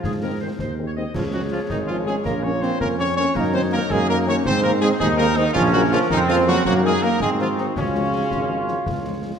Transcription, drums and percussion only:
0.04 concert bass drum, snare
0.59 concert bass drum, snare
1.14 concert bass drum, snare, crash
1.70 concert bass drum, snare
2.07 snare
2.25 concert bass drum, snare
2.62 snare
2.81 concert bass drum, snare
2.99 snare
3.17 snare
3.35 concert bass drum, snare, crash
3.90 concert bass drum, snare
4.27 snare
4.45 concert bass drum, snare
4.82 snare
5.00 concert bass drum, snare
5.19 snare
5.37 snare
5.56 concert bass drum, snare, crash
6.10 concert bass drum, snare
6.48 snare
6.65 concert bass drum, snare
7.02 snare
7.20 concert bass drum, snare
7.39 snare
7.58 snare
7.76 concert bass drum, snare, crash
8.31 concert bass drum, snare
8.68 snare
8.86 concert bass drum, snare

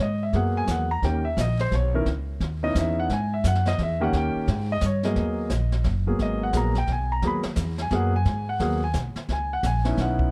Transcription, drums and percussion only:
0.33 kick, snare
0.67 kick, snare, hi-hat pedal
1.02 brush sweep, kick, snare
1.37 kick, snare, hi-hat pedal
1.59 snare
1.71 kick, snare
2.06 brush sweep, kick, snare
2.40 kick, snare
2.75 kick, snare, hi-hat pedal
3.09 brush sweep, kick, snare
3.44 kick, snare, hi-hat pedal
3.55 snare
3.66 snare
3.78 kick, snare
4.13 brush sweep, kick, snare
4.47 kick, snare
4.81 kick, snare, hi-hat pedal
5.03 snare
5.16 brush sweep, kick, snare
5.50 kick, snare, hi-hat pedal
5.72 snare
5.84 kick, snare
6.19 brush sweep, kick, snare
6.53 kick, snare, hi-hat pedal
6.75 snare
6.87 kick, snare
7.22 brush sweep, kick, snare
7.43 snare
7.56 kick, snare, hi-hat pedal
7.78 snare
7.91 kick, snare
8.25 brush sweep, kick, snare
8.60 kick, snare
8.94 kick, snare, hi-hat pedal
9.16 snare
9.29 brush sweep, kick, snare
9.63 kick, snare, hi-hat pedal
9.85 snare
9.97 kick, snare
10.19 kick

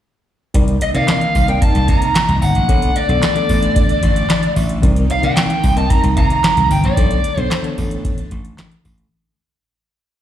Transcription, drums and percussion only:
0.54 kick, closed hi-hat
0.68 closed hi-hat
0.81 closed hi-hat
0.95 closed hi-hat
1.08 snare, clap, closed hi-hat
1.21 closed hi-hat
1.35 kick, open hi-hat
1.48 closed hi-hat
1.62 kick, closed hi-hat
1.75 closed hi-hat
1.88 kick, closed hi-hat
2.02 closed hi-hat
2.15 snare, clap, closed hi-hat
2.29 closed hi-hat
2.42 open hi-hat
2.55 closed hi-hat
2.69 kick, closed hi-hat
2.82 closed hi-hat
2.96 closed hi-hat
3.09 closed hi-hat
3.22 snare, clap, closed hi-hat
3.36 closed hi-hat
3.49 kick, open hi-hat
3.62 closed hi-hat
3.76 kick, closed hi-hat
3.89 closed hi-hat
4.03 kick, closed hi-hat
4.16 closed hi-hat
4.30 snare, clap, closed hi-hat
4.43 closed hi-hat
4.56 open hi-hat
4.69 closed hi-hat
4.83 kick, closed hi-hat
4.96 closed hi-hat
5.10 closed hi-hat
5.23 closed hi-hat
5.37 snare, clap, closed hi-hat
5.50 closed hi-hat
5.64 kick, open hi-hat
5.77 closed hi-hat
5.90 kick, closed hi-hat
6.04 closed hi-hat
6.17 kick, closed hi-hat
6.30 closed hi-hat
6.44 snare, clap, closed hi-hat
6.57 closed hi-hat
6.71 open hi-hat
6.84 closed hi-hat
6.97 kick, closed hi-hat
7.11 closed hi-hat
7.24 closed hi-hat
7.38 closed hi-hat
7.51 snare, clap, closed hi-hat
7.64 closed hi-hat
7.78 kick, open hi-hat
7.91 closed hi-hat
8.05 kick, closed hi-hat
8.18 closed hi-hat
8.31 kick, closed hi-hat
8.45 closed hi-hat
8.58 snare, clap, closed hi-hat
8.72 closed hi-hat
8.85 kick, open hi-hat
8.98 closed hi-hat

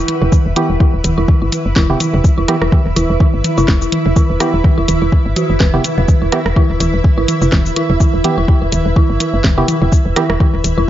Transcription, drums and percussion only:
0.08 closed hi-hat, high tom
0.22 mid tom
0.32 kick, high tom, cabasa
0.56 closed hi-hat, high tom
0.80 kick, high tom
1.04 closed hi-hat, high tom, cabasa
1.28 kick, high tom
1.52 closed hi-hat, high tom, cabasa
1.76 kick, snare, high tom
1.90 mid tom
2.00 closed hi-hat, high tom, cabasa
2.14 mid tom
2.24 kick, high tom, cabasa
2.48 cross-stick, closed hi-hat, high tom
2.62 cross-stick
2.72 kick, high tom
2.96 closed hi-hat, high tom, cabasa
3.20 kick, high tom
3.44 closed hi-hat, high tom, cabasa
3.58 mid tom, cabasa
3.68 kick, snare, high tom
3.82 cabasa
3.92 closed hi-hat, high tom
4.06 mid tom
4.16 kick, high tom, cabasa
4.40 cross-stick, closed hi-hat, high tom, cabasa
4.64 kick, high tom
4.88 closed hi-hat, high tom, cabasa
5.12 kick, high tom
5.36 closed hi-hat, high tom, cabasa
5.60 kick, snare, high tom
5.74 mid tom
5.84 closed hi-hat, high tom, cabasa
5.98 mid tom
6.08 kick, high tom, cabasa
6.32 cross-stick, closed hi-hat, high tom
6.46 cross-stick
6.56 kick, high tom
6.80 closed hi-hat, high tom, cabasa
7.04 kick, high tom
7.28 closed hi-hat, high tom, cabasa
7.42 mid tom, cabasa
7.52 kick, snare, high tom
7.66 cabasa
7.76 closed hi-hat, high tom
7.90 mid tom
8.00 kick, high tom, cabasa
8.24 closed hi-hat, high tom
8.48 kick, high tom
8.72 closed hi-hat, high tom, cabasa
8.96 kick, high tom
9.20 closed hi-hat, high tom, cabasa
9.44 kick, snare, high tom
9.58 mid tom
9.68 closed hi-hat, high tom, cabasa
9.82 mid tom
9.92 kick, high tom, cabasa
10.16 cross-stick, closed hi-hat, high tom
10.30 cross-stick
10.40 kick, high tom
10.64 closed hi-hat, high tom, cabasa

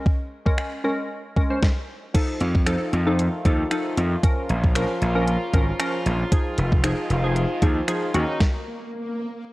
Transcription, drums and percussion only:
0.06 kick
0.46 kick
0.58 finger snap
1.36 kick
1.62 kick, snare
2.15 kick, closed hi-hat, crash
2.40 closed hi-hat
2.55 kick
2.66 finger snap, closed hi-hat
2.93 closed hi-hat
3.19 closed hi-hat
3.45 kick, closed hi-hat
3.71 finger snap, closed hi-hat
3.97 closed hi-hat
4.23 kick, closed hi-hat
4.49 closed hi-hat
4.64 kick
4.75 finger snap, closed hi-hat
5.02 closed hi-hat
5.28 closed hi-hat
5.54 kick, closed hi-hat
5.80 finger snap, closed hi-hat
6.06 closed hi-hat
6.32 kick, closed hi-hat
6.58 closed hi-hat
6.72 kick
6.84 finger snap, closed hi-hat
7.10 closed hi-hat
7.36 closed hi-hat
7.62 kick, closed hi-hat
7.88 finger snap, closed hi-hat
8.15 closed hi-hat
8.41 kick, snare

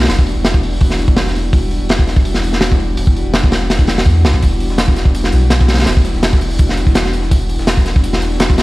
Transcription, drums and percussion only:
0.00 snare
0.04 snare, open hi-hat
0.08 snare, open hi-hat
0.19 kick
0.27 open hi-hat
0.45 snare, open hi-hat
0.54 kick
0.63 open hi-hat
0.81 kick, open hi-hat
0.90 snare
0.99 open hi-hat
1.08 kick
1.17 snare, open hi-hat
1.27 snare
1.35 open hi-hat
1.53 kick, open hi-hat
1.71 open hi-hat
1.89 snare, open hi-hat
1.99 kick
2.07 snare, open hi-hat
2.16 kick
2.25 open hi-hat
2.34 snare
2.43 open hi-hat
2.53 snare
2.61 snare, open hi-hat
2.72 kick
2.80 open hi-hat
2.97 open hi-hat
3.07 kick
3.16 open hi-hat
3.34 snare, open hi-hat
3.44 kick
3.52 snare, open hi-hat
3.70 snare, open hi-hat
3.79 kick
3.87 snare, open hi-hat
3.98 snare, open hi-hat
4.06 kick, open hi-hat
4.25 snare, open hi-hat
4.34 kick
4.42 kick, closed hi-hat, open hi-hat
4.60 closed hi-hat, open hi-hat
4.70 snare
4.78 snare, open hi-hat
4.88 kick
4.96 snare, closed hi-hat, open hi-hat
5.05 kick
5.15 closed hi-hat, open hi-hat
5.24 snare
5.32 closed hi-hat, open hi-hat
5.50 snare, closed hi-hat, open hi-hat
5.60 kick, snare
5.68 snare, closed hi-hat, open hi-hat
5.74 snare, open hi-hat
5.79 snare, closed hi-hat, open hi-hat
5.82 snare, open hi-hat
5.86 snare, closed hi-hat, open hi-hat
5.97 kick
6.05 snare, closed hi-hat, open hi-hat
6.15 snare
6.23 snare, closed hi-hat, open hi-hat
6.33 kick, snare
6.41 closed hi-hat, open hi-hat
6.51 closed hi-hat
6.59 kick, closed hi-hat, open hi-hat
6.69 snare
6.77 closed hi-hat, open hi-hat
6.87 kick, snare
6.95 snare, closed hi-hat, open hi-hat
7.05 snare, closed hi-hat
7.14 closed hi-hat, open hi-hat
7.23 snare
7.31 kick, closed hi-hat, open hi-hat
7.49 closed hi-hat, open hi-hat
7.59 snare
7.67 snare, open hi-hat
7.77 kick
7.86 snare, closed hi-hat, open hi-hat
7.96 kick
8.04 closed hi-hat, open hi-hat
8.13 snare
8.22 closed hi-hat, open hi-hat
8.40 snare, closed hi-hat, open hi-hat
8.50 kick, snare
8.58 snare, closed hi-hat, open hi-hat

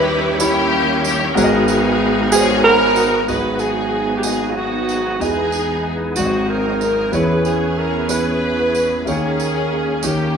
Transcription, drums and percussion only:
0.40 tambourine
1.04 tambourine
1.37 tambourine
1.68 tambourine
2.32 tambourine
2.96 tambourine
3.28 tambourine
3.59 tambourine
4.23 tambourine
4.89 tambourine
5.21 tambourine
5.52 tambourine
6.16 tambourine
6.81 tambourine
7.13 tambourine
7.45 tambourine
8.09 tambourine
8.75 tambourine
9.07 tambourine
9.40 tambourine
10.03 tambourine

